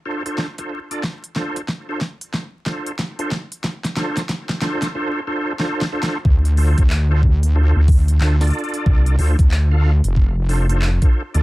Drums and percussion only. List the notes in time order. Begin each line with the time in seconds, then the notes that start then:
0.26 closed hi-hat
0.38 snare
0.58 kick, closed hi-hat
0.91 closed hi-hat
1.04 kick, snare
1.24 closed hi-hat
1.36 snare
1.56 kick, closed hi-hat
1.68 snare
2.01 kick, snare
2.21 closed hi-hat
2.34 snare
2.66 kick, snare
2.87 closed hi-hat
2.99 snare
3.19 closed hi-hat
3.31 snare
3.52 closed hi-hat
3.64 kick, snare
3.85 snare, closed hi-hat
3.97 snare
4.17 kick, snare, closed hi-hat
4.29 snare
4.49 snare
4.62 snare
4.82 snare, closed hi-hat
5.59 snare
5.81 snare
6.03 snare
6.25 kick
6.45 closed hi-hat
6.57 open hi-hat
6.78 kick, closed hi-hat
6.90 clap
7.23 kick
7.43 closed hi-hat
7.88 kick, open hi-hat
8.08 closed hi-hat
8.21 clap
8.41 snare, closed hi-hat
8.44 closed hi-hat
8.47 closed hi-hat
8.50 closed hi-hat
8.53 closed hi-hat
8.59 closed hi-hat
8.64 closed hi-hat
8.69 closed hi-hat
8.74 closed hi-hat
8.86 kick
9.06 closed hi-hat
9.19 open hi-hat
9.39 kick, closed hi-hat
9.51 clap
10.04 closed hi-hat
10.16 kick
10.49 open hi-hat
10.69 closed hi-hat
10.82 clap
11.02 kick, closed hi-hat
11.35 closed hi-hat